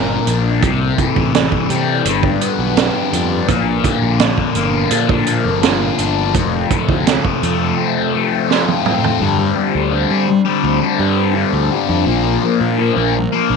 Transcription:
0.00 0.17 G1 medium
0.00 0.62 A#2 medium
0.00 0.61 F3 medium
0.00 0.61 A#3 medium
0.00 0.63 A#3 medium
0.00 0.60 D4 medium
0.00 0.62 A#4 medium
0.27 0.62 A#1 medium
0.27 0.63 D4 medium
0.27 closed hi-hat medium
0.62 0.91 C2 medium
0.62 2.05 C3 medium
0.62 3.46 G3 medium
0.62 2.04 C4 medium
0.62 2.04 E4 medium
0.62 2.04 A4 medium
0.62 kick loud
0.62 closed hi-hat medium
0.98 1.33 E3 medium
0.98 kick medium
0.98 closed hi-hat medium
1.16 1.45 A1 medium
1.16 kick medium
1.34 2.05 E3 medium
1.34 snare loud
1.34 closed hi-hat medium
1.52 kick medium
1.70 1.99 C3 medium
1.70 2.06 G3 medium
1.70 closed hi-hat medium
2.05 2.34 G1 loud
2.05 3.49 G2 medium
2.05 3.47 B3 medium
2.05 6.31 D4 medium
2.05 3.48 B4 medium
2.05 closed hi-hat medium
2.23 kick medium
2.41 3.48 B3 medium
2.41 closed hi-hat medium
2.59 2.88 B1 medium
2.77 3.48 G4 medium
2.77 snare loud
2.77 closed hi-hat medium
3.12 3.42 F2 medium
3.12 3.48 D4 medium
3.12 closed hi-hat medium
3.48 3.78 A#1 medium
3.48 5.27 A#2 medium
3.48 6.33 F3 medium
3.48 6.32 A#3 medium
3.48 6.32 A#4 medium
3.48 kick medium
3.48 closed hi-hat medium
3.84 4.19 D3 medium
3.84 kick medium
3.84 closed hi-hat medium
4.02 4.31 A#1 medium
4.20 5.99 D3 medium
4.20 snare loud
4.20 closed hi-hat medium
4.38 kick medium
4.55 4.84 G1 medium
4.55 5.27 A#3 medium
4.55 closed hi-hat medium
4.91 5.47 A#2 loud
4.91 5.98 D4 medium
4.91 closed hi-hat medium
5.09 kick medium
5.26 6.35 A#3 medium
5.26 closed hi-hat medium
5.45 5.89 G1 medium
5.63 6.35 F4 medium
5.63 snare loud
5.63 closed hi-hat medium
5.99 6.35 G1 medium
5.99 6.35 D4 medium
5.99 closed hi-hat medium
6.34 6.64 F1 medium
6.34 8.14 F2 medium
6.34 9.18 F3 medium
6.34 9.18 A3 medium
6.34 9.18 C4 medium
6.34 9.18 A4 medium
6.34 kick medium
6.34 closed hi-hat medium
6.71 8.50 C3 medium
6.71 kick medium
6.71 closed hi-hat medium
6.88 7.17 D2 medium
6.88 kick medium
7.07 8.86 F3 medium
7.07 snare loud
7.07 closed hi-hat medium
7.25 kick medium
7.42 7.71 F2 medium
7.42 8.13 A3 medium
7.42 closed hi-hat medium
7.78 8.84 C4 medium
8.14 9.21 A3 medium
8.50 9.21 F4 medium
8.50 snare medium
8.68 high tom medium
8.85 9.21 C4 medium
8.85 mid tom medium
9.04 floor tom medium
9.20 9.54 G2 medium
9.20 9.50 G2 loud
9.20 9.39 D3 medium
9.20 12.04 G3 medium
9.20 9.37 G3 loud
9.20 12.04 C4 medium
9.20 13.56 D4 medium
9.20 12.05 C5 medium
9.38 9.56 D3 medium
9.38 9.57 G3 medium
9.56 9.90 G2 medium
9.56 9.92 D3 medium
9.56 9.93 G3 medium
9.75 10.04 D2 loud
9.91 10.26 G2 medium
9.91 10.10 D3 medium
9.91 10.07 G3 loud
10.09 10.27 D3 medium
10.09 10.27 G3 medium
10.09 10.40 G3 medium
10.28 muted distorted electric guitar stroke soft
10.45 10.82 D3 medium
10.45 10.79 G3 medium
10.64 10.78 D2 loud
10.80 10.99 D3 medium
10.80 11.00 G3 medium
10.98 11.33 G2 medium
10.98 11.43 G2 medium
10.98 11.34 D3 medium
10.98 11.35 G3 medium
11.34 11.69 G2 medium
11.34 11.71 D3 medium
11.34 11.72 G3 loud
11.53 11.68 D2 medium
11.71 12.05 G2 medium
11.71 11.90 D3 medium
11.71 11.87 G3 medium
11.88 12.04 F2 medium
11.88 12.06 D3 medium
11.88 12.05 G3 medium
12.05 12.36 A#1 loud
12.05 12.41 A#2 medium
12.05 13.56 F3 medium
12.05 12.26 F3 loud
12.05 13.56 A#3 medium
12.05 12.22 A#3 loud
12.05 13.56 A#4 medium
12.24 12.43 F3 medium
12.24 12.44 A#3 medium
12.42 12.77 A#2 medium
12.42 12.79 F3 medium
12.42 12.80 A#3 medium
12.60 12.90 A#2 medium
12.78 13.14 A#2 medium
12.78 12.98 F3 loud
12.78 12.95 A#3 medium
12.96 13.26 A#1 medium
12.96 13.14 F3 medium
12.96 13.14 A#3 medium
13.15 muted distorted electric guitar stroke medium
13.32 13.56 F3 medium
13.32 13.56 A#3 medium
13.50 13.56 A#1 loud

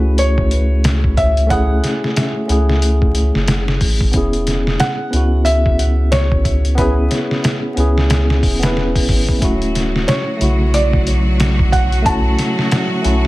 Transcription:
0.00 1.81 C#2 medium
0.00 1.47 A3 medium
0.00 1.49 C#4 medium
0.00 1.51 E4 medium
0.00 1.49 F#4 medium
0.00 1.53 G#4 medium
0.00 0.21 B4 medium
0.18 1.14 C#5 medium
0.18 closed hi-hat medium
0.38 kick medium
0.51 closed hi-hat medium
0.84 snare loud
0.84 closed hi-hat medium
1.04 kick medium
1.17 1.48 E5 loud
1.17 kick medium
1.17 closed hi-hat medium
1.37 closed hi-hat soft
1.47 2.44 A3 medium
1.47 2.45 C#4 medium
1.47 3.77 F#5 medium
1.47 kick loud
1.47 closed hi-hat medium
1.51 2.46 E4 medium
1.51 2.47 G#4 loud
1.84 snare soft
1.84 closed hi-hat medium
2.04 snare soft
2.16 snare loud
2.16 closed hi-hat medium
2.46 3.31 C#2 medium
2.46 4.09 A3 medium
2.46 4.10 C#4 medium
2.46 4.11 E4 medium
2.46 closed hi-hat medium
2.52 4.12 G#4 medium
2.69 snare soft
2.82 closed hi-hat medium
3.02 kick medium
3.15 closed hi-hat medium
3.35 3.79 F#1 medium
3.35 snare soft
3.48 snare loud
3.48 closed hi-hat medium
3.68 snare medium
3.81 4.11 A1 medium
3.81 kick medium
3.81 open hi-hat medium
4.01 kick medium
4.12 4.77 E1 medium
4.12 5.09 B3 medium
4.12 5.09 C#4 medium
4.12 kick loud
4.12 closed hi-hat medium
4.16 5.11 E4 medium
4.16 5.11 G#4 medium
4.33 closed hi-hat soft
4.47 snare soft
4.47 closed hi-hat medium
4.67 snare soft
4.80 5.48 F#5 loud
4.80 snare loud
4.80 closed hi-hat medium
5.10 7.08 C#2 medium
5.10 6.73 B3 medium
5.10 6.74 C#4 medium
5.10 6.75 E4 medium
5.10 closed hi-hat medium
5.16 6.76 F#4 medium
5.45 6.13 E5 loud
5.45 closed hi-hat medium
5.66 kick medium
5.79 closed hi-hat medium
6.12 6.74 C#5 medium
6.12 snare loud
6.12 closed hi-hat medium
6.32 kick loud
6.45 kick medium
6.45 closed hi-hat medium
6.65 closed hi-hat soft
6.75 7.72 B3 medium
6.75 7.73 C#4 medium
6.75 7.74 E4 medium
6.75 8.06 B4 medium
6.75 kick loud
6.75 closed hi-hat medium
6.81 7.75 G#4 loud
7.11 snare soft
7.11 closed hi-hat medium
7.31 snare soft
7.44 snare loud
7.44 closed hi-hat medium
7.74 8.42 C#2 medium
7.74 8.57 B3 medium
7.74 8.58 C#4 medium
7.74 closed hi-hat medium
7.78 8.59 E4 medium
7.78 8.60 G#4 medium
7.98 snare soft
8.10 snare loud
8.10 closed hi-hat medium
8.30 snare soft
8.43 9.06 E1 medium
8.43 kick medium
8.43 open hi-hat medium
8.59 9.37 B3 medium
8.59 9.38 C#4 medium
8.59 snare loud
8.59 closed hi-hat medium
8.64 9.39 E4 medium
8.64 9.40 B4 medium
8.77 snare soft
8.96 kick medium
8.96 open hi-hat medium
9.09 9.26 G#1 loud
9.09 kick medium
9.09 open hi-hat medium
9.29 kick medium
9.39 10.05 D1 medium
9.39 13.27 F#3 medium
9.39 10.36 A3 medium
9.39 10.37 C#4 medium
9.39 10.38 E4 medium
9.39 13.27 F#4 medium
9.39 kick loud
9.39 closed hi-hat medium
9.45 10.39 F#4 medium
9.62 closed hi-hat soft
9.75 snare soft
9.75 closed hi-hat medium
9.96 snare soft
10.08 10.75 C#5 medium
10.08 snare loud
10.08 closed hi-hat medium
10.37 12.36 B1 medium
10.37 12.02 C#3 medium
10.37 12.00 A3 medium
10.37 12.02 E4 medium
10.37 closed hi-hat medium
10.43 12.04 F#4 medium
10.74 11.76 D5 medium
10.74 closed hi-hat medium
10.93 kick medium
11.07 closed hi-hat medium
11.40 snare loud
11.40 closed hi-hat medium
11.59 kick loud
11.72 12.06 F#5 loud
11.72 kick medium
11.72 closed hi-hat medium
11.92 closed hi-hat soft
12.02 13.00 A3 medium
12.02 13.01 C#4 medium
12.02 13.27 A5 loud
12.02 kick loud
12.02 closed hi-hat medium
12.07 13.02 E4 medium
12.07 13.03 F#4 loud
12.39 snare soft
12.39 closed hi-hat medium
12.59 snare soft
12.72 snare loud
12.72 closed hi-hat medium
13.02 13.27 B1 medium
13.02 13.27 A3 medium
13.02 13.27 C#4 medium
13.02 closed hi-hat medium
13.06 13.27 E4 medium
13.06 13.27 F#4 medium

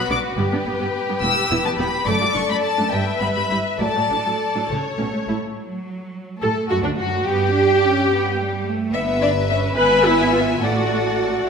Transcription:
0.00 0.39 F#4 medium
0.00 0.35 B4 medium
0.00 0.11 B5 medium
0.10 0.15 B1 soft
0.10 0.17 B2 soft
0.10 0.16 B3 soft
0.10 0.16 D4 soft
0.10 0.18 D6 medium
0.38 0.43 G1 medium
0.38 0.44 G2 medium
0.38 0.44 G3 medium
0.38 0.44 B3 medium
0.38 2.07 G4 medium
0.38 2.03 B4 medium
0.52 0.58 G2 soft
0.52 0.58 B3 soft
0.52 0.58 D4 soft
0.66 0.72 G1 soft
0.66 0.72 G2 soft
0.66 0.72 B3 soft
0.80 0.85 G2 medium
0.80 0.86 G3 medium
0.80 0.86 B3 medium
1.08 1.14 G2 soft
1.08 1.15 B3 soft
1.22 1.27 E1 medium
1.22 1.28 E2 medium
1.22 1.28 B3 medium
1.22 1.62 E6 medium
1.50 1.56 E1 soft
1.50 1.56 E2 soft
1.50 1.56 B3 soft
1.50 1.56 E4 soft
1.65 1.70 E2 medium
1.65 1.71 B3 medium
1.65 1.71 A5 medium
1.79 1.84 E1 soft
1.79 1.84 E2 soft
1.79 1.84 B3 soft
1.79 1.84 G4 soft
1.79 2.06 B5 medium
2.06 2.12 F#1 medium
2.06 2.12 F#2 medium
2.06 2.13 A3 medium
2.06 2.90 A4 soft
2.06 2.92 D5 soft
2.06 2.35 D6 medium
2.21 2.26 F#2 soft
2.21 2.27 A3 soft
2.21 2.27 F#4 soft
2.35 2.41 F#1 soft
2.35 2.41 F#2 soft
2.35 2.41 A3 soft
2.35 2.40 D4 soft
2.35 2.49 C#6 medium
2.49 2.54 F#2 medium
2.49 2.55 A3 medium
2.49 2.55 B5 medium
2.64 2.92 A5 medium
2.78 2.83 F#2 soft
2.78 2.84 A3 soft
2.78 2.84 D4 soft
2.92 2.98 G1 medium
2.92 2.99 G2 medium
2.92 2.98 G3 medium
2.92 3.80 B4 soft
2.92 3.80 E5 soft
2.92 3.21 G5 medium
3.20 3.27 G1 soft
3.20 3.27 G2 soft
3.20 3.27 G3 soft
3.20 3.27 B3 soft
3.20 3.26 B5 medium
3.36 3.42 G2 medium
3.36 3.42 G3 medium
3.36 3.49 B5 medium
3.50 3.57 G1 soft
3.50 3.57 G2 soft
3.50 3.57 G3 soft
3.50 3.57 E4 soft
3.50 3.58 B5 medium
3.80 3.86 A1 medium
3.80 3.86 A2 medium
3.80 3.86 F#3 medium
3.80 3.86 A3 soft
3.80 5.36 A4 soft
3.80 4.69 D5 soft
3.80 4.67 A5 medium
3.96 4.02 A2 soft
3.96 4.01 F#3 soft
3.96 4.02 F#4 soft
4.10 4.16 A1 soft
4.10 4.17 A2 soft
4.10 4.16 F#3 soft
4.10 4.16 D4 soft
4.25 4.32 A2 medium
4.25 4.31 F#3 medium
4.25 4.31 A3 soft
4.55 4.61 A2 soft
4.55 4.61 F#3 soft
4.55 4.61 D4 soft
4.69 4.75 A1 medium
4.69 4.78 C#3 medium
4.69 4.76 A3 soft
4.69 5.36 C#5 soft
4.98 5.04 A1 soft
4.98 5.07 B2 medium
4.98 5.04 A3 soft
4.98 5.04 C#4 soft
5.13 5.19 A3 medium
5.28 5.33 A1 soft
5.28 5.57 A2 soft
5.28 5.34 A3 soft
5.28 5.34 E4 soft
5.57 6.38 F#3 soft
6.42 6.50 A2 medium
6.42 7.27 A3 soft
6.42 6.68 A4 medium
6.42 6.50 A4 medium
6.42 6.51 A4 medium
6.69 6.84 F#2 medium
6.69 6.83 F#4 medium
6.69 6.76 F#4 medium
6.83 6.98 D2 medium
6.83 6.89 D4 soft
6.83 6.89 D4 medium
6.83 6.90 D4 medium
6.97 7.26 F#2 medium
6.97 7.25 F#4 medium
6.97 7.26 F#4 medium
7.25 8.64 G2 medium
7.25 7.54 B3 medium
7.25 8.66 G4 medium
7.25 8.67 G4 medium
7.54 7.82 D4 medium
7.83 8.11 C#4 medium
8.12 8.39 B3 medium
8.39 8.66 G3 medium
8.66 8.94 A3 medium
8.93 9.73 G1 medium
8.93 9.21 B3 medium
8.93 10.57 B4 medium
8.93 9.73 E5 medium
8.93 9.02 E5 medium
9.22 9.30 D4 medium
9.22 9.30 D5 medium
9.49 9.76 C#4 medium
9.49 9.58 E5 medium
9.76 10.60 G#1 medium
9.76 10.59 B3 medium
9.76 10.03 B4 medium
9.76 10.60 E5 medium
9.76 10.60 G#5 medium
10.05 10.33 E4 medium
10.33 10.62 F4 medium
10.61 11.46 A1 medium
10.61 11.40 A3 medium
10.61 11.46 F#4 medium
10.61 11.46 A4 soft
10.61 11.47 D5 medium
10.61 11.48 F#5 soft

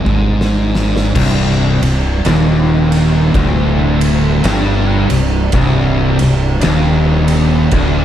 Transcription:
0.00 1.11 C3 medium
0.00 1.11 G3 medium
0.00 1.11 D4 medium
0.05 1.11 G#1 medium
0.05 1.13 G#2 loud
0.05 floor tom medium
0.41 snare medium
0.75 snare medium
0.96 snare medium
1.15 1.78 C1 medium
1.15 1.80 C2 loud
1.15 8.05 C3 medium
1.15 8.05 G3 medium
1.15 8.05 D4 medium
1.15 kick loud
1.15 crash loud
1.51 snare soft
1.81 2.21 C1 medium
1.81 2.16 C2 medium
1.81 ride medium
2.25 3.30 D#1 loud
2.25 3.33 D#2 loud
2.25 snare loud
2.25 ride loud
2.92 ride medium
3.34 4.40 D1 loud
3.34 4.43 D2 loud
3.34 kick loud
3.34 ride loud
4.01 ride medium
4.44 5.07 G1 medium
4.44 5.09 G2 loud
4.44 snare loud
4.44 ride loud
5.10 5.50 C1 medium
5.10 5.45 C2 medium
5.10 ride medium
5.52 6.16 C1 medium
5.52 6.19 C2 loud
5.52 kick loud
5.52 ride loud
6.19 6.60 C1 medium
6.19 6.55 C2 medium
6.19 ride medium
6.61 7.69 D#1 medium
6.61 7.71 D#2 loud
6.61 snare loud
6.61 ride loud
7.28 ride medium
7.71 8.05 D1 loud
7.71 8.05 D2 loud
7.71 kick loud
7.71 ride loud

